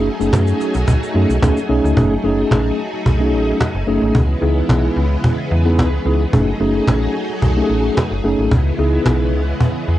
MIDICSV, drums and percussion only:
0, 0, Header, 1, 3, 480
1, 0, Start_track
1, 0, Tempo, 545455
1, 1732, Time_signature, 4, 2, 24, 8
1, 8789, End_track
2, 0, Start_track
2, 0, Title_t, "Cajon"
2, 54, Note_on_c, 9, 38, 41
2, 142, Note_off_c, 9, 38, 0
2, 182, Note_on_c, 9, 38, 32
2, 270, Note_off_c, 9, 38, 0
2, 290, Note_on_c, 9, 36, 114
2, 295, Note_on_c, 9, 38, 109
2, 305, Note_off_c, 9, 38, 0
2, 305, Note_on_c, 9, 38, 90
2, 378, Note_off_c, 9, 36, 0
2, 393, Note_off_c, 9, 38, 0
2, 534, Note_on_c, 9, 38, 41
2, 622, Note_off_c, 9, 38, 0
2, 656, Note_on_c, 9, 38, 28
2, 744, Note_off_c, 9, 38, 0
2, 772, Note_on_c, 9, 36, 102
2, 860, Note_off_c, 9, 36, 0
2, 901, Note_on_c, 9, 38, 18
2, 989, Note_off_c, 9, 38, 0
2, 1009, Note_on_c, 9, 38, 39
2, 1097, Note_off_c, 9, 38, 0
2, 1139, Note_on_c, 9, 38, 28
2, 1227, Note_off_c, 9, 38, 0
2, 1253, Note_on_c, 9, 36, 120
2, 1256, Note_on_c, 9, 38, 122
2, 1265, Note_off_c, 9, 38, 0
2, 1265, Note_on_c, 9, 38, 89
2, 1341, Note_off_c, 9, 36, 0
2, 1353, Note_off_c, 9, 38, 0
2, 1381, Note_on_c, 9, 38, 21
2, 1469, Note_off_c, 9, 38, 0
2, 1622, Note_on_c, 9, 38, 29
2, 1710, Note_off_c, 9, 38, 0
2, 1732, Note_on_c, 9, 36, 119
2, 1820, Note_off_c, 9, 36, 0
2, 1973, Note_on_c, 9, 38, 39
2, 2061, Note_off_c, 9, 38, 0
2, 2103, Note_on_c, 9, 38, 29
2, 2191, Note_off_c, 9, 38, 0
2, 2210, Note_on_c, 9, 36, 97
2, 2216, Note_on_c, 9, 38, 105
2, 2226, Note_off_c, 9, 38, 0
2, 2226, Note_on_c, 9, 38, 84
2, 2298, Note_off_c, 9, 36, 0
2, 2314, Note_off_c, 9, 38, 0
2, 2345, Note_on_c, 9, 38, 19
2, 2433, Note_off_c, 9, 38, 0
2, 2457, Note_on_c, 9, 38, 41
2, 2545, Note_off_c, 9, 38, 0
2, 2579, Note_on_c, 9, 38, 27
2, 2667, Note_off_c, 9, 38, 0
2, 2692, Note_on_c, 9, 36, 106
2, 2780, Note_off_c, 9, 36, 0
2, 2821, Note_on_c, 9, 38, 17
2, 2909, Note_off_c, 9, 38, 0
2, 2931, Note_on_c, 9, 38, 40
2, 3019, Note_off_c, 9, 38, 0
2, 3059, Note_on_c, 9, 38, 26
2, 3147, Note_off_c, 9, 38, 0
2, 3173, Note_on_c, 9, 36, 100
2, 3176, Note_on_c, 9, 38, 108
2, 3185, Note_off_c, 9, 38, 0
2, 3185, Note_on_c, 9, 38, 98
2, 3261, Note_off_c, 9, 36, 0
2, 3273, Note_off_c, 9, 38, 0
2, 3301, Note_on_c, 9, 38, 20
2, 3389, Note_off_c, 9, 38, 0
2, 3541, Note_on_c, 9, 38, 25
2, 3629, Note_off_c, 9, 38, 0
2, 3652, Note_on_c, 9, 36, 104
2, 3740, Note_off_c, 9, 36, 0
2, 3895, Note_on_c, 9, 38, 41
2, 3983, Note_off_c, 9, 38, 0
2, 4023, Note_on_c, 9, 38, 31
2, 4111, Note_off_c, 9, 38, 0
2, 4130, Note_on_c, 9, 36, 106
2, 4136, Note_on_c, 9, 38, 113
2, 4146, Note_off_c, 9, 38, 0
2, 4146, Note_on_c, 9, 38, 84
2, 4218, Note_off_c, 9, 36, 0
2, 4234, Note_off_c, 9, 38, 0
2, 4265, Note_on_c, 9, 38, 18
2, 4353, Note_off_c, 9, 38, 0
2, 4375, Note_on_c, 9, 38, 39
2, 4463, Note_off_c, 9, 38, 0
2, 4496, Note_on_c, 9, 38, 28
2, 4584, Note_off_c, 9, 38, 0
2, 4612, Note_on_c, 9, 36, 104
2, 4700, Note_off_c, 9, 36, 0
2, 4740, Note_on_c, 9, 38, 18
2, 4828, Note_off_c, 9, 38, 0
2, 4851, Note_on_c, 9, 38, 35
2, 4939, Note_off_c, 9, 38, 0
2, 4979, Note_on_c, 9, 38, 28
2, 5067, Note_off_c, 9, 38, 0
2, 5093, Note_on_c, 9, 36, 97
2, 5096, Note_on_c, 9, 38, 112
2, 5106, Note_off_c, 9, 38, 0
2, 5106, Note_on_c, 9, 38, 90
2, 5181, Note_off_c, 9, 36, 0
2, 5194, Note_off_c, 9, 38, 0
2, 5221, Note_on_c, 9, 38, 20
2, 5309, Note_off_c, 9, 38, 0
2, 5462, Note_on_c, 9, 38, 30
2, 5550, Note_off_c, 9, 38, 0
2, 5572, Note_on_c, 9, 36, 114
2, 5660, Note_off_c, 9, 36, 0
2, 5815, Note_on_c, 9, 38, 41
2, 5903, Note_off_c, 9, 38, 0
2, 5944, Note_on_c, 9, 38, 30
2, 6032, Note_off_c, 9, 38, 0
2, 6050, Note_on_c, 9, 36, 102
2, 6056, Note_on_c, 9, 38, 116
2, 6066, Note_off_c, 9, 38, 0
2, 6066, Note_on_c, 9, 38, 91
2, 6138, Note_off_c, 9, 36, 0
2, 6154, Note_off_c, 9, 38, 0
2, 6184, Note_on_c, 9, 38, 21
2, 6272, Note_off_c, 9, 38, 0
2, 6296, Note_on_c, 9, 38, 45
2, 6384, Note_off_c, 9, 38, 0
2, 6416, Note_on_c, 9, 38, 28
2, 6504, Note_off_c, 9, 38, 0
2, 6532, Note_on_c, 9, 36, 103
2, 6620, Note_off_c, 9, 36, 0
2, 6769, Note_on_c, 9, 38, 39
2, 6857, Note_off_c, 9, 38, 0
2, 6897, Note_on_c, 9, 38, 27
2, 6985, Note_off_c, 9, 38, 0
2, 7014, Note_on_c, 9, 36, 99
2, 7018, Note_on_c, 9, 38, 103
2, 7027, Note_off_c, 9, 38, 0
2, 7027, Note_on_c, 9, 38, 86
2, 7102, Note_off_c, 9, 36, 0
2, 7115, Note_off_c, 9, 38, 0
2, 7143, Note_on_c, 9, 38, 22
2, 7231, Note_off_c, 9, 38, 0
2, 7382, Note_on_c, 9, 38, 27
2, 7470, Note_off_c, 9, 38, 0
2, 7492, Note_on_c, 9, 36, 115
2, 7580, Note_off_c, 9, 36, 0
2, 7624, Note_on_c, 9, 38, 20
2, 7712, Note_off_c, 9, 38, 0
2, 7733, Note_on_c, 9, 38, 42
2, 7821, Note_off_c, 9, 38, 0
2, 7861, Note_on_c, 9, 38, 30
2, 7949, Note_off_c, 9, 38, 0
2, 7970, Note_on_c, 9, 36, 105
2, 7975, Note_on_c, 9, 38, 99
2, 7984, Note_off_c, 9, 38, 0
2, 7984, Note_on_c, 9, 38, 86
2, 8058, Note_off_c, 9, 36, 0
2, 8072, Note_off_c, 9, 38, 0
2, 8214, Note_on_c, 9, 38, 36
2, 8302, Note_off_c, 9, 38, 0
2, 8336, Note_on_c, 9, 38, 27
2, 8424, Note_off_c, 9, 38, 0
2, 8452, Note_on_c, 9, 36, 107
2, 8540, Note_off_c, 9, 36, 0
2, 8580, Note_on_c, 9, 38, 19
2, 8668, Note_off_c, 9, 38, 0
2, 8689, Note_on_c, 9, 38, 36
2, 8777, Note_off_c, 9, 38, 0
2, 8789, End_track
3, 0, Start_track
3, 0, Title_t, "Drums"
3, 184, Note_on_c, 9, 82, 64
3, 272, Note_off_c, 9, 82, 0
3, 295, Note_on_c, 9, 82, 85
3, 383, Note_off_c, 9, 82, 0
3, 416, Note_on_c, 9, 82, 55
3, 504, Note_off_c, 9, 82, 0
3, 536, Note_on_c, 9, 82, 59
3, 624, Note_off_c, 9, 82, 0
3, 653, Note_on_c, 9, 82, 59
3, 741, Note_off_c, 9, 82, 0
3, 773, Note_on_c, 9, 82, 79
3, 861, Note_off_c, 9, 82, 0
3, 908, Note_on_c, 9, 82, 56
3, 996, Note_off_c, 9, 82, 0
3, 1145, Note_on_c, 9, 82, 59
3, 1233, Note_off_c, 9, 82, 0
3, 1258, Note_on_c, 9, 82, 68
3, 1346, Note_off_c, 9, 82, 0
3, 1383, Note_on_c, 9, 82, 55
3, 1471, Note_off_c, 9, 82, 0
3, 1632, Note_on_c, 9, 82, 48
3, 1720, Note_off_c, 9, 82, 0
3, 8789, End_track
0, 0, End_of_file